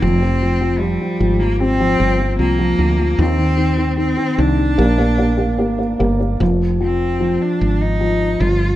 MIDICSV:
0, 0, Header, 1, 4, 480
1, 0, Start_track
1, 0, Tempo, 798935
1, 14, Time_signature, 4, 2, 24, 8
1, 5261, End_track
2, 0, Start_track
2, 0, Title_t, "Cello"
2, 0, Program_c, 0, 42
2, 12, Note_on_c, 0, 60, 96
2, 478, Note_on_c, 0, 55, 86
2, 487, Note_off_c, 0, 60, 0
2, 840, Note_on_c, 0, 58, 86
2, 849, Note_off_c, 0, 55, 0
2, 959, Note_on_c, 0, 60, 108
2, 968, Note_off_c, 0, 58, 0
2, 1433, Note_off_c, 0, 60, 0
2, 1436, Note_on_c, 0, 58, 92
2, 1917, Note_on_c, 0, 60, 98
2, 1926, Note_off_c, 0, 58, 0
2, 2392, Note_off_c, 0, 60, 0
2, 2396, Note_on_c, 0, 60, 96
2, 2637, Note_on_c, 0, 62, 95
2, 2646, Note_off_c, 0, 60, 0
2, 3609, Note_off_c, 0, 62, 0
2, 4101, Note_on_c, 0, 60, 85
2, 4455, Note_on_c, 0, 62, 79
2, 4464, Note_off_c, 0, 60, 0
2, 4696, Note_on_c, 0, 63, 91
2, 4705, Note_off_c, 0, 62, 0
2, 5054, Note_on_c, 0, 65, 89
2, 5063, Note_off_c, 0, 63, 0
2, 5261, Note_off_c, 0, 65, 0
2, 5261, End_track
3, 0, Start_track
3, 0, Title_t, "Felt piano"
3, 0, Program_c, 1, 0
3, 0, Control_c, 1, 64, 127
3, 13, Note_on_c, 1, 53, 59
3, 21, Control_c, 1, 64, 0
3, 124, Control_c, 1, 64, 127
3, 125, Note_off_c, 1, 53, 0
3, 134, Note_on_c, 1, 53, 49
3, 246, Note_off_c, 1, 53, 0
3, 255, Note_on_c, 1, 53, 43
3, 358, Note_off_c, 1, 53, 0
3, 367, Note_on_c, 1, 53, 47
3, 482, Note_off_c, 1, 53, 0
3, 491, Note_on_c, 1, 53, 52
3, 600, Note_off_c, 1, 53, 0
3, 609, Note_on_c, 1, 53, 46
3, 713, Note_off_c, 1, 53, 0
3, 722, Note_on_c, 1, 53, 55
3, 838, Note_off_c, 1, 53, 0
3, 847, Note_on_c, 1, 53, 44
3, 963, Note_on_c, 1, 60, 63
3, 1074, Note_off_c, 1, 53, 0
3, 1083, Note_on_c, 1, 53, 59
3, 1190, Note_off_c, 1, 53, 0
3, 1199, Note_on_c, 1, 53, 54
3, 1312, Note_off_c, 1, 53, 0
3, 1321, Note_on_c, 1, 53, 49
3, 1430, Note_off_c, 1, 53, 0
3, 1439, Note_on_c, 1, 53, 55
3, 1548, Note_off_c, 1, 53, 0
3, 1557, Note_on_c, 1, 53, 57
3, 1667, Note_off_c, 1, 53, 0
3, 1676, Note_on_c, 1, 53, 48
3, 1789, Note_off_c, 1, 53, 0
3, 1798, Note_on_c, 1, 53, 52
3, 1896, Note_off_c, 1, 60, 0
3, 1916, Note_off_c, 1, 53, 0
3, 1917, Note_on_c, 1, 51, 59
3, 1930, Control_c, 1, 64, 0
3, 2021, Note_off_c, 1, 51, 0
3, 2024, Control_c, 1, 64, 127
3, 2030, Note_on_c, 1, 51, 51
3, 2137, Note_off_c, 1, 51, 0
3, 2146, Note_on_c, 1, 51, 52
3, 2259, Note_off_c, 1, 51, 0
3, 2268, Note_on_c, 1, 51, 55
3, 2379, Note_off_c, 1, 51, 0
3, 2388, Note_on_c, 1, 51, 54
3, 2498, Note_off_c, 1, 51, 0
3, 2507, Note_on_c, 1, 51, 49
3, 2621, Note_off_c, 1, 51, 0
3, 2630, Note_on_c, 1, 51, 51
3, 2743, Note_off_c, 1, 51, 0
3, 2752, Note_on_c, 1, 51, 49
3, 2872, Note_off_c, 1, 51, 0
3, 2872, Note_on_c, 1, 58, 66
3, 2885, Control_c, 1, 64, 0
3, 2985, Note_off_c, 1, 58, 0
3, 2986, Control_c, 1, 64, 127
3, 2994, Note_on_c, 1, 58, 65
3, 3106, Note_off_c, 1, 58, 0
3, 3115, Note_on_c, 1, 58, 59
3, 3223, Note_off_c, 1, 58, 0
3, 3232, Note_on_c, 1, 58, 55
3, 3348, Note_off_c, 1, 58, 0
3, 3357, Note_on_c, 1, 58, 58
3, 3469, Note_off_c, 1, 58, 0
3, 3478, Note_on_c, 1, 58, 51
3, 3593, Note_off_c, 1, 58, 0
3, 3602, Note_on_c, 1, 58, 52
3, 3715, Note_off_c, 1, 58, 0
3, 3724, Note_on_c, 1, 58, 50
3, 3844, Note_off_c, 1, 58, 0
3, 3846, Note_on_c, 1, 53, 51
3, 3858, Control_c, 1, 64, 0
3, 3964, Control_c, 1, 64, 127
3, 4079, Note_off_c, 1, 53, 0
3, 4088, Note_on_c, 1, 53, 53
3, 4319, Note_off_c, 1, 53, 0
3, 4328, Note_on_c, 1, 53, 53
3, 4801, Note_off_c, 1, 53, 0
3, 4810, Note_on_c, 1, 53, 53
3, 5261, Note_off_c, 1, 53, 0
3, 5261, End_track
4, 0, Start_track
4, 0, Title_t, "Fretless electric bass"
4, 0, Program_c, 2, 35
4, 14, Note_on_c, 2, 29, 95
4, 583, Note_off_c, 2, 29, 0
4, 723, Note_on_c, 2, 32, 83
4, 1179, Note_off_c, 2, 32, 0
4, 1200, Note_on_c, 2, 31, 81
4, 1424, Note_off_c, 2, 31, 0
4, 1435, Note_on_c, 2, 36, 69
4, 1661, Note_off_c, 2, 36, 0
4, 1674, Note_on_c, 2, 38, 71
4, 1900, Note_off_c, 2, 38, 0
4, 1914, Note_on_c, 2, 39, 93
4, 2491, Note_off_c, 2, 39, 0
4, 2634, Note_on_c, 2, 36, 90
4, 2860, Note_off_c, 2, 36, 0
4, 2875, Note_on_c, 2, 34, 105
4, 3360, Note_off_c, 2, 34, 0
4, 3360, Note_on_c, 2, 32, 72
4, 3589, Note_off_c, 2, 32, 0
4, 3605, Note_on_c, 2, 31, 83
4, 3832, Note_off_c, 2, 31, 0
4, 3846, Note_on_c, 2, 29, 95
4, 4428, Note_off_c, 2, 29, 0
4, 4574, Note_on_c, 2, 32, 80
4, 5028, Note_off_c, 2, 32, 0
4, 5049, Note_on_c, 2, 31, 99
4, 5261, Note_off_c, 2, 31, 0
4, 5261, End_track
0, 0, End_of_file